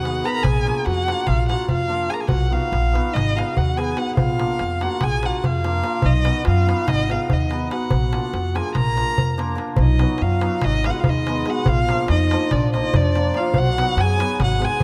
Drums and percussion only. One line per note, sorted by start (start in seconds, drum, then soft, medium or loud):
0.05 darbuka tek medium
0.25 darbuka tek medium
0.44 darbuka dum loud
0.56 darbuka tek soft
0.67 darbuka tek medium
0.86 darbuka tek medium
0.98 darbuka tek soft
1.08 darbuka tek medium
1.27 darbuka tek medium
1.27 darbuka dum medium
1.38 darbuka tek soft
1.50 darbuka tek medium
1.59 darbuka tek soft
1.69 darbuka dum medium
1.80 darbuka tek soft
2.11 darbuka tek medium
2.29 darbuka dum medium
2.42 darbuka tek soft
2.73 darbuka tek medium
2.95 darbuka tek medium
3.16 darbuka tek medium
3.16 darbuka dum medium
3.38 darbuka tek medium
3.57 darbuka dum medium
3.79 darbuka tek medium
3.97 darbuka tek medium
4.17 darbuka dum loud
4.28 darbuka tek soft
4.39 darbuka tek medium
4.59 darbuka tek medium
4.81 darbuka tek medium
5.01 darbuka tek medium
5.01 darbuka dum medium
5.12 darbuka tek soft
5.23 darbuka tek medium
5.44 darbuka dum medium
5.64 darbuka tek medium
5.84 darbuka tek medium
6.02 darbuka dum loud
6.14 darbuka tek soft
6.25 darbuka tek medium
6.45 darbuka tek medium
6.69 darbuka tek medium
6.88 darbuka tek medium
6.88 darbuka dum medium
6.99 darbuka tek soft
7.10 darbuka tek medium
7.30 darbuka dum medium
7.51 darbuka tek medium
7.71 darbuka tek medium
7.90 darbuka dum loud
8.13 darbuka tek medium
8.34 darbuka tek medium
8.56 darbuka tek medium
8.65 darbuka tek soft
8.75 darbuka tek medium
8.75 darbuka dum medium
8.86 darbuka tek soft
8.97 darbuka tek medium
9.08 darbuka tek soft
9.18 darbuka dum medium
9.29 darbuka tek soft
9.39 darbuka tek medium
9.49 darbuka tek soft
9.58 darbuka tek medium
9.68 darbuka tek soft
9.76 darbuka dum loud
9.88 darbuka tek soft
9.99 darbuka tek medium
10.18 darbuka tek medium
10.41 darbuka tek medium
10.61 darbuka tek medium
10.61 darbuka dum medium
10.73 darbuka tek soft
10.84 darbuka tek medium
11.04 darbuka dum loud
11.27 darbuka tek medium
11.46 darbuka tek medium
11.66 darbuka dum loud
11.78 darbuka tek soft
11.89 darbuka tek medium
12.08 darbuka tek medium
12.31 darbuka tek medium
12.51 darbuka tek medium
12.51 darbuka dum medium
12.62 darbuka tek soft
12.74 darbuka tek medium
12.94 darbuka dum loud
13.15 darbuka tek medium
13.34 darbuka tek medium
13.54 darbuka dum loud
13.66 darbuka tek soft
13.78 darbuka tek medium
13.98 darbuka tek medium
14.20 darbuka tek medium
14.40 darbuka tek medium
14.40 darbuka dum medium
14.51 darbuka tek soft
14.62 darbuka tek medium
14.80 darbuka dum medium